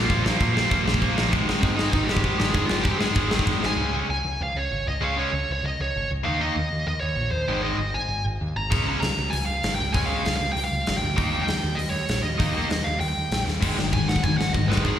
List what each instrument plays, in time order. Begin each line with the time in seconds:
Already playing: lead electric guitar F4
0.09 picked electric bass A#1, distorted electric guitar A#2 F3 A#3, kick, crash
0.25 picked electric bass A#1, distorted electric guitar A#2 F3 A#3, snare
0.40 distorted electric guitar A#2 F3 A#3, picked electric bass A#2, kick, crash
0.56 distorted electric guitar A#2 F3 A#3, snare
0.71 picked electric bass A#1, distorted electric guitar A#2 F3 A#3, kick, crash
0.85 picked electric bass A#1, overdriven electric guitar A#2 F3, distorted electric guitar A#3, snare
0.89 distorted electric guitar A#2 F3
0.94 kick
1.02 picked electric bass A#1, distorted electric guitar A#2 F3 A#3, kick, crash
1.17 picked electric bass A#1, distorted electric guitar A#2 F3 A#3, snare
1.30 picked electric bass G#1, distorted electric guitar G#2, overdriven electric guitar G#3, kick, crash
1.34 distorted electric guitar G#2 D#3 G#3
1.48 picked electric bass G#1, distorted electric guitar G#2 D#3 G#3, snare
1.62 picked electric bass G#2, distorted electric guitar G#2 D#3 G#3, lead electric guitar C4, kick, crash
1.76 distorted electric guitar G#2 D#3 G#3, lead electric guitar D#4, snare
1.92 picked electric bass G#1, distorted electric guitar G#2 D#3 G#3, lead electric guitar D#4, kick, crash
2.04 distorted electric guitar G#3, lead electric guitar G4
2.09 picked electric bass G#1, distorted electric guitar G#2 D#3, snare
2.17 kick
2.23 picked electric bass G#1, distorted electric guitar G#2 D#3 G#3, kick, crash
2.38 picked electric bass G#1, distorted electric guitar G#2 D#3 G#3, snare
2.50 distorted electric guitar G#2, lead electric guitar G#4, crash
2.55 picked electric bass G#1, distorted electric guitar D#3 G#3, kick
2.66 distorted electric guitar G#3, lead electric guitar F4, snare
2.70 picked electric bass G#1, distorted electric guitar G#2 D#3
2.82 distorted electric guitar G#2 D#3, picked electric bass G#2, lead electric guitar G4, kick, crash
2.86 distorted electric guitar G#3
2.98 distorted electric guitar G#2 D#3 G#3, lead electric guitar G#4, snare
3.15 picked electric bass G#1, distorted electric guitar G#2 D#3 G#3, kick, crash
3.31 picked electric bass G#1, distorted electric guitar G#2 D#3 G#3, snare
3.39 kick
3.45 picked electric bass G#1, distorted electric guitar G#2 D#3 G#3, kick, crash
3.62 picked electric bass G#1, distorted electric guitar G#2 D#3 G#3, snare
3.66 lead electric guitar G#5
3.76 picked electric bass C#2, distorted electric guitar C#3 G#3 C#4
3.92 distorted electric guitar C#3 G#3 C#4
4.09 picked electric bass C#2, lead electric guitar G#5
4.25 picked electric bass C#2
4.40 picked electric bass C#2, lead electric guitar F5
4.55 picked electric bass C#2, lead electric guitar C#5
4.71 picked electric bass G#1
4.87 picked electric bass C#2, lead electric guitar D#5
5.01 picked electric bass C#2, distorted electric guitar C#3 G#3 C#4, lead electric guitar F5
5.16 distorted electric guitar C#3 G#3 C#4, lead electric guitar C#5
5.33 picked electric bass C#2
5.50 picked electric bass C#2, lead electric guitar C#5
5.63 picked electric bass C#2, lead electric guitar D#5
5.80 picked electric bass C#2, lead electric guitar C#5
5.96 picked electric bass G#1
6.11 picked electric bass C#2
6.24 picked electric bass D#2, distorted electric guitar D#3 A#3 D#4, lead electric guitar F5
6.39 distorted electric guitar D#3 A#3 D#4, lead electric guitar D#5
6.56 picked electric bass D#2
6.72 picked electric bass D#2
6.87 picked electric bass D#2, lead electric guitar D#5
7.00 picked electric bass D#2, lead electric guitar C#5
7.16 picked electric bass A#1
7.31 picked electric bass D#2, lead electric guitar C5
7.48 picked electric bass G#1, distorted electric guitar G#2 D#3 G#3
7.63 distorted electric guitar G#2 D#3 G#3, lead electric guitar D#5
7.78 picked electric bass G#1
7.94 picked electric bass G#1, lead electric guitar G#5
8.09 picked electric bass G#1
8.25 picked electric bass G#1
8.41 picked electric bass D#2
8.56 picked electric bass G#1, lead electric guitar A#5
8.71 picked electric bass C#2, distorted electric guitar C#3 G#3 C#4, kick, crash
8.86 distorted electric guitar C#3 G#3 C#4
9.01 picked electric bass C#2, lead electric guitar A#5, snare, open hi-hat
9.18 picked electric bass C#2
9.30 picked electric bass C#2, lead electric guitar G#5, open hi-hat
9.46 picked electric bass C#2, lead electric guitar F5
9.63 picked electric bass G#1, snare, open hi-hat
9.75 lead electric guitar G5
9.80 picked electric bass C#2
9.93 picked electric bass C#2, distorted electric guitar C#3 G#3 C#4, lead electric guitar G#5, kick, open hi-hat
10.05 distorted electric guitar C#3, lead electric guitar F5
10.10 distorted electric guitar G#3 C#4
10.25 picked electric bass C#2, snare, open hi-hat
10.36 lead electric guitar F5
10.41 picked electric bass C#2
10.52 picked electric bass C#2, lead electric guitar G5
10.57 open hi-hat
10.64 lead electric guitar F5
10.72 picked electric bass C#2
10.87 picked electric bass G#1, snare, open hi-hat
10.98 lead electric guitar G5
11.03 picked electric bass D2
11.16 picked electric bass D#2, distorted electric guitar D#3 A#3 D#4, kick, open hi-hat
11.32 distorted electric guitar D#3 A#3 D#4
11.43 lead electric guitar G5
11.47 picked electric bass D#2, snare, open hi-hat
11.63 picked electric bass D#2
11.75 picked electric bass D#2, lead electric guitar D#5, open hi-hat
11.90 picked electric bass D#2, lead electric guitar C#5
12.08 picked electric bass A#1, snare, open hi-hat
12.23 picked electric bass D#2, lead electric guitar D#5
12.39 picked electric bass D#2, distorted electric guitar D#3 A#3 D#4, kick, open hi-hat
12.54 distorted electric guitar D#3 A#3 D#4
12.69 picked electric bass D#2, snare, open hi-hat
12.84 picked electric bass D#2, lead electric guitar F5
13.00 picked electric bass D#2, lead electric guitar G5, open hi-hat
13.17 picked electric bass D#2
13.31 picked electric bass A#1, snare, open hi-hat
13.46 picked electric bass D#2, snare
13.61 picked electric bass G#1, distorted electric guitar G#2 D#3 G#3, kick, crash
13.76 picked electric bass G#1, distorted electric guitar G#2 D#3, snare
13.92 picked electric bass G#1, distorted electric guitar G#2 D#3, lead electric guitar G#5, kick, ride
14.08 picked electric bass G#1, distorted electric guitar G#2 D#3, lead electric guitar F#5, snare
14.16 kick
14.23 picked electric bass D#2, distorted electric guitar G#2 D#3, lead electric guitar G#5, kick, ride
14.37 picked electric bass G#1, distorted electric guitar G#2 D#3, lead electric guitar F#5, snare
14.53 picked electric bass G#1, distorted electric guitar G#2 D#3, lead electric guitar D#5, kick, ride
14.67 picked electric bass G#1, distorted electric guitar G#2 D#3 G#3, lead electric guitar B4
14.72 snare
14.77 kick
14.83 picked electric bass G#1, distorted electric guitar G#2 D#3 G#3, lead electric guitar G#4, kick, ride